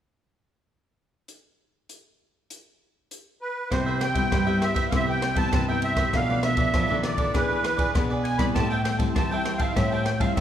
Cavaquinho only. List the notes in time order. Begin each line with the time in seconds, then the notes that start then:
3.70 E4 B4 C5 E5
3.86 B4 C5 E5
4.00 muted cavaquinho stroke
4.14 B4 C5 E5
4.31 E4 B4 C5 E5
4.47 B4 C5 E5
4.74 B4 C5 E5
4.92 E4 B4 C5 E5
5.07 B4 C5 E5
5.21 muted cavaquinho stroke
5.35 B4 C5 E5
5.52 E4 B4 C5 E5
5.68 B4 C5 E5
5.97 B4 C5 E5
6.14 F4 A4 B4 D5
6.30 A4 B4 D5
6.43 muted cavaquinho stroke
6.57 A4 B4 D5
6.74 F4 A4 B4 D5
6.89 A4 B4 D5
7.17 A4 B4 D5
7.34 E4 G#4 B4 D5
7.49 G#4 B4 D5
7.63 muted cavaquinho stroke
7.77 G#4 B4 D5
7.93 E4 G#4 B4 D5
8.10 G#4 B4 D5
8.39 G#4 B4 D5
8.55 G4 C5 E5 A5
8.71 C5 E5 A5
8.84 muted cavaquinho stroke
8.99 C5 E5 A5
9.16 G4 C5 E5 A5
9.32 C5 E5 A5
9.60 C5 E5 A5
9.77 G4 C5 E5 A5
9.92 C5 E5 A5
10.07 muted cavaquinho stroke
10.20 C5 E5 A5
10.37 G4